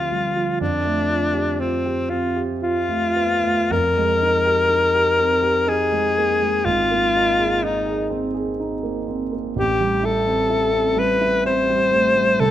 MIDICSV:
0, 0, Header, 1, 3, 480
1, 0, Start_track
1, 0, Tempo, 1005025
1, 289, Time_signature, 3, 2, 24, 8
1, 1251, Tempo, 1083032
1, 1731, Tempo, 1001669
1, 2211, Tempo, 970874
1, 4611, Tempo, 946372
1, 6107, End_track
2, 0, Start_track
2, 0, Title_t, "Alto saxophone"
2, 0, Program_c, 0, 65
2, 0, Note_on_c, 0, 65, 57
2, 283, Note_off_c, 0, 65, 0
2, 286, Note_on_c, 0, 62, 59
2, 764, Note_on_c, 0, 60, 48
2, 771, Note_off_c, 0, 62, 0
2, 1002, Note_on_c, 0, 65, 54
2, 1009, Note_off_c, 0, 60, 0
2, 1163, Note_off_c, 0, 65, 0
2, 1256, Note_on_c, 0, 65, 63
2, 1738, Note_on_c, 0, 70, 73
2, 1745, Note_off_c, 0, 65, 0
2, 2697, Note_on_c, 0, 68, 70
2, 2704, Note_off_c, 0, 70, 0
2, 3173, Note_on_c, 0, 65, 73
2, 3180, Note_off_c, 0, 68, 0
2, 3662, Note_on_c, 0, 63, 55
2, 3669, Note_off_c, 0, 65, 0
2, 3898, Note_off_c, 0, 63, 0
2, 4616, Note_on_c, 0, 67, 68
2, 4861, Note_on_c, 0, 69, 66
2, 4868, Note_off_c, 0, 67, 0
2, 5338, Note_on_c, 0, 71, 72
2, 5345, Note_off_c, 0, 69, 0
2, 5573, Note_off_c, 0, 71, 0
2, 5576, Note_on_c, 0, 72, 75
2, 6052, Note_on_c, 0, 69, 77
2, 6059, Note_off_c, 0, 72, 0
2, 6107, Note_off_c, 0, 69, 0
2, 6107, End_track
3, 0, Start_track
3, 0, Title_t, "Grand piano"
3, 0, Program_c, 1, 0
3, 0, Control_c, 1, 64, 127
3, 0, Note_on_c, 1, 38, 39
3, 0, Note_on_c, 1, 53, 31
3, 0, Note_on_c, 1, 60, 34
3, 0, Note_on_c, 1, 64, 34
3, 0, Note_on_c, 1, 67, 35
3, 55, Note_on_c, 1, 55, 28
3, 121, Note_off_c, 1, 53, 0
3, 170, Note_on_c, 1, 53, 33
3, 172, Note_off_c, 1, 55, 0
3, 270, Note_off_c, 1, 38, 0
3, 289, Note_off_c, 1, 53, 0
3, 290, Note_on_c, 1, 41, 39
3, 295, Control_c, 1, 64, 0
3, 297, Note_off_c, 1, 60, 0
3, 297, Note_off_c, 1, 64, 0
3, 299, Note_off_c, 1, 67, 0
3, 371, Control_c, 1, 64, 127
3, 407, Note_on_c, 1, 57, 31
3, 525, Note_on_c, 1, 65, 37
3, 598, Note_off_c, 1, 57, 0
3, 639, Note_on_c, 1, 67, 35
3, 718, Note_off_c, 1, 65, 0
3, 767, Note_on_c, 1, 65, 36
3, 836, Note_off_c, 1, 67, 0
3, 887, Note_on_c, 1, 67, 36
3, 961, Note_off_c, 1, 65, 0
3, 1010, Note_on_c, 1, 60, 35
3, 1081, Note_off_c, 1, 67, 0
3, 1129, Note_on_c, 1, 67, 35
3, 1204, Note_off_c, 1, 60, 0
3, 1251, Note_on_c, 1, 65, 36
3, 1321, Note_off_c, 1, 67, 0
3, 1370, Note_on_c, 1, 57, 34
3, 1440, Note_off_c, 1, 65, 0
3, 1491, Note_on_c, 1, 59, 32
3, 1565, Note_off_c, 1, 57, 0
3, 1612, Note_on_c, 1, 57, 35
3, 1613, Note_off_c, 1, 59, 0
3, 1715, Note_off_c, 1, 41, 0
3, 1731, Note_off_c, 1, 57, 0
3, 1732, Note_on_c, 1, 41, 42
3, 1740, Control_c, 1, 64, 0
3, 1831, Control_c, 1, 64, 127
3, 1862, Note_on_c, 1, 56, 36
3, 1978, Note_on_c, 1, 63, 37
3, 2050, Note_off_c, 1, 56, 0
3, 2093, Note_on_c, 1, 67, 37
3, 2166, Note_off_c, 1, 63, 0
3, 2206, Note_on_c, 1, 63, 40
3, 2284, Note_off_c, 1, 67, 0
3, 2331, Note_on_c, 1, 67, 40
3, 2403, Note_off_c, 1, 63, 0
3, 2448, Note_on_c, 1, 60, 41
3, 2526, Note_off_c, 1, 67, 0
3, 2568, Note_on_c, 1, 67, 41
3, 2644, Note_off_c, 1, 60, 0
3, 2690, Note_on_c, 1, 63, 42
3, 2763, Note_off_c, 1, 67, 0
3, 2813, Note_on_c, 1, 56, 37
3, 2884, Note_off_c, 1, 63, 0
3, 2940, Note_on_c, 1, 58, 34
3, 3006, Note_off_c, 1, 56, 0
3, 3057, Note_off_c, 1, 58, 0
3, 3061, Note_on_c, 1, 56, 36
3, 3156, Note_off_c, 1, 41, 0
3, 3177, Note_on_c, 1, 32, 47
3, 3179, Note_off_c, 1, 56, 0
3, 3184, Control_c, 1, 64, 0
3, 3260, Control_c, 1, 64, 127
3, 3301, Note_on_c, 1, 58, 38
3, 3425, Note_on_c, 1, 63, 39
3, 3493, Note_off_c, 1, 58, 0
3, 3536, Note_on_c, 1, 68, 44
3, 3614, Note_off_c, 1, 63, 0
3, 3655, Note_on_c, 1, 63, 43
3, 3728, Note_off_c, 1, 68, 0
3, 3773, Note_on_c, 1, 68, 41
3, 3847, Note_off_c, 1, 63, 0
3, 3889, Note_on_c, 1, 60, 41
3, 3966, Note_off_c, 1, 68, 0
3, 4010, Note_on_c, 1, 68, 42
3, 4084, Note_off_c, 1, 60, 0
3, 4136, Note_on_c, 1, 63, 42
3, 4204, Note_off_c, 1, 68, 0
3, 4252, Note_on_c, 1, 58, 38
3, 4327, Note_off_c, 1, 63, 0
3, 4376, Note_on_c, 1, 60, 37
3, 4445, Note_off_c, 1, 58, 0
3, 4492, Note_on_c, 1, 58, 40
3, 4495, Note_off_c, 1, 60, 0
3, 4593, Note_off_c, 1, 32, 0
3, 4612, Note_off_c, 1, 58, 0
3, 4612, Note_on_c, 1, 33, 49
3, 4620, Control_c, 1, 64, 0
3, 4697, Control_c, 1, 64, 127
3, 4736, Note_on_c, 1, 55, 39
3, 4852, Note_on_c, 1, 64, 42
3, 4928, Note_off_c, 1, 55, 0
3, 4971, Note_on_c, 1, 60, 43
3, 5045, Note_off_c, 1, 64, 0
3, 5089, Note_on_c, 1, 64, 42
3, 5165, Note_off_c, 1, 60, 0
3, 5207, Note_on_c, 1, 60, 41
3, 5284, Note_off_c, 1, 64, 0
3, 5323, Note_on_c, 1, 55, 41
3, 5402, Note_off_c, 1, 60, 0
3, 5449, Note_on_c, 1, 64, 41
3, 5520, Note_off_c, 1, 55, 0
3, 5573, Note_on_c, 1, 60, 43
3, 5642, Note_off_c, 1, 64, 0
3, 5693, Note_on_c, 1, 55, 38
3, 5764, Note_off_c, 1, 60, 0
3, 5808, Note_on_c, 1, 57, 37
3, 5884, Note_off_c, 1, 55, 0
3, 5930, Note_off_c, 1, 57, 0
3, 5931, Note_on_c, 1, 55, 39
3, 6032, Note_off_c, 1, 33, 0
3, 6051, Note_on_c, 1, 36, 50
3, 6052, Note_off_c, 1, 55, 0
3, 6061, Control_c, 1, 64, 0
3, 6107, Note_off_c, 1, 36, 0
3, 6107, End_track
0, 0, End_of_file